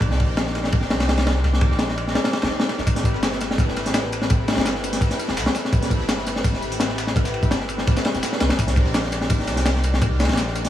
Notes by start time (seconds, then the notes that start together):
0.01 C2 D#4 G4 A#4 C5 D5, kick, ride
0.11 snare
0.20 kick, ride
0.29 A#1
0.37 snare, ride
0.47 snare
0.55 D#4 G4 A#4 C5 D5, snare, ride
0.64 snare
0.72 G1, kick, ride
0.81 snare
0.90 C2, snare, ride
1.00 snare, ride
1.09 snare, ride
1.18 snare, ride
1.27 snare, ride
1.35 snare
1.44 C2 D#4 G4 A#4 C5 D5, snare, ride
1.53 snare
1.61 kick, ride
1.71 A#1, snare
1.79 snare, ride
1.89 snare
1.98 D#4 G4 A#4 C5 D5, ride
2.08 snare
2.15 snare, ride
2.24 snare, ride
2.33 snare, ride
2.42 G1 D#4 G4 A#4 C5 D5, snare, ride
2.50 snare
2.60 snare
2.69 snare, ride
2.78 G1, snare
2.87 A1 C4 E4 G4 A4 B4, kick, ride, tambourine
2.96 snare, closed hi-hat
3.04 kick, ride, tambourine
3.14 G1, snare
3.23 snare, ride, tambourine
3.32 snare
3.40 C4 E4 G4 A4 B4, snare, ride, tambourine
3.51 snare
3.58 E1, kick, ride, tambourine
3.68 snare
3.76 A1, snare, ride, tambourine
3.86 snare, closed hi-hat
3.94 snare, ride, tambourine
4.03 snare
4.12 ride, tambourine
4.22 snare
4.30 A1 C4 E4 G4 A4 B4, kick, ride, tambourine
4.48 snare, ride, tambourine
4.53 snare, ride
4.57 G1, snare, ride
4.61 snare, ride
4.65 snare, ride, tambourine
4.75 snare
4.84 C4 E4 G4 A4 B4, ride, tambourine
4.93 snare, closed hi-hat
5.01 kick, ride, tambourine
5.11 snare, closed hi-hat
5.19 ride, tambourine
5.28 E1, snare
5.37 C2, snare, ride, tambourine
5.46 snare
5.55 snare, ride, tambourine
5.65 snare
5.72 A1 C4 E4 G4 A4 B4, kick, ride, tambourine
5.82 snare, closed hi-hat
5.90 kick, ride, tambourine
6.00 G1, snare
6.09 snare, ride, tambourine
6.18 snare
6.26 C4 E4 G4 A4 B4, snare, ride, tambourine
6.36 snare
6.44 E1, kick, ride, tambourine
6.54 snare
6.62 A1, tambourine
6.72 closed hi-hat
6.80 snare, ride, tambourine
6.89 snare
6.98 snare, ride, tambourine
7.07 snare
7.16 A1 C4 E4 G4 A4 B4, kick, ride, tambourine
7.25 snare, tambourine
7.34 ride
7.43 G1, kick, tambourine
7.51 snare, ride, tambourine
7.60 snare
7.69 C4 E4 G4 A4 B4, ride, tambourine
7.78 snare
7.87 kick, ride, tambourine
7.97 snare, tambourine
8.05 snare, ride
8.14 E1 C4 E4 G4 A4 B4, snare, tambourine
8.23 snare, ride, tambourine
8.32 snare
8.40 C2, snare, ride, tambourine
8.49 E1, snare, ride
8.59 C2 D#4 G4 A#4 C5 D5, kick, ride, tambourine
8.67 snare, closed hi-hat
8.76 kick, ride, tambourine
8.86 A#1, snare
8.94 snare, ride, tambourine
9.03 snare
9.12 D#4 G4 A#4 C5 D5, snare, ride, tambourine
9.21 snare
9.30 G1, kick, ride, tambourine
9.39 snare
9.47 C2, snare, ride, tambourine
9.56 snare, closed hi-hat
9.65 snare, ride, tambourine
9.75 snare
9.84 ride, tambourine
9.93 snare
10.01 C2 D#4 G4 A#4 C5 D5, kick, ride, tambourine
10.20 snare, ride, tambourine
10.24 snare, ride
10.29 A#1, snare, ride
10.33 snare, ride
10.37 snare, ride, tambourine
10.48 snare
10.55 D#4 G4 A#4 C5 D5, ride, tambourine
10.65 snare, closed hi-hat